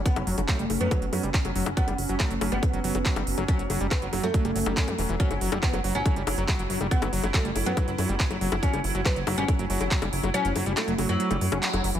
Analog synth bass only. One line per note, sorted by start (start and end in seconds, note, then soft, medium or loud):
0.16 0.24 F#1 medium
0.27 0.34 F#1 loud
0.38 0.45 F#1 medium
0.59 0.67 F#1 medium
0.70 0.77 F#1 loud
0.81 0.88 F#2 medium
1.02 1.09 F#1 medium
1.13 1.20 F#2 loud
1.23 1.31 F#1 medium
1.45 1.52 F#1 medium
1.56 1.63 F#1 loud
1.66 1.74 F#1 medium
1.88 1.95 F#1 medium
1.98 2.06 F#1 medium
2.09 2.17 F#1 medium
2.31 2.38 F#1 medium
2.41 2.49 F#1 loud
2.52 2.59 G1 medium
2.73 2.81 F#1 medium
2.84 2.92 F#1 loud
2.95 3.02 F#1 medium
3.16 3.24 F#1 medium
3.27 3.34 F#1 loud
3.38 3.45 F#1 medium
3.59 3.67 F#1 medium
3.70 3.77 F#1 loud
3.81 3.88 F#1 medium
4.02 4.09 F#1 medium
4.13 4.20 F#1 loud
4.23 4.31 F#2 medium
4.45 4.52 F#1 medium
4.56 4.63 F#1 loud
4.66 4.74 F#1 medium
4.88 4.95 F#2 medium
4.98 5.06 E1 loud
5.09 5.17 E1 medium
5.31 5.38 F#1 medium
5.41 5.49 F#1 loud
5.52 5.59 F#1 medium
5.73 5.81 F#1 medium
5.84 5.92 F#1 loud
5.95 6.02 G1 medium
6.16 6.24 F#1 medium
6.27 6.34 F#1 medium
6.38 6.45 F#1 loud
6.59 6.67 F#1 medium
6.70 6.77 F#1 loud
6.81 6.88 F#1 medium
7.02 7.09 F#1 medium
7.13 7.20 F#1 loud
7.23 7.31 F#1 medium
7.45 7.52 F#1 medium
7.56 7.63 F#1 loud
7.66 7.74 F#2 medium
7.88 7.95 F#1 medium
7.98 8.06 F#2 loud
8.09 8.17 F#1 medium
8.31 8.38 F#1 medium
8.41 8.49 F#1 loud
8.52 8.59 F#1 medium
8.73 8.81 F#1 medium
8.84 8.92 F#1 loud
8.95 9.02 F#1 medium
9.16 9.24 F#1 medium
9.27 9.34 F#1 loud
9.38 9.45 G1 medium
9.59 9.67 F#1 medium
9.70 9.77 F#1 loud
9.81 9.88 F#1 medium
10.02 10.09 F#1 medium
10.13 10.20 F#1 loud
10.23 10.31 F#1 loud
10.45 10.52 F#1 medium
10.56 10.63 F#1 loud
10.66 10.74 F#1 medium
10.88 10.95 F#1 medium
10.98 11.06 F#1 loud
11.09 11.17 F#2 medium
11.31 11.38 F#1 medium
11.41 11.49 F#2 loud
11.52 11.59 F#1 medium
11.73 11.81 F#1 medium
11.84 11.92 F#1 loud
11.95 12.00 F#1 loud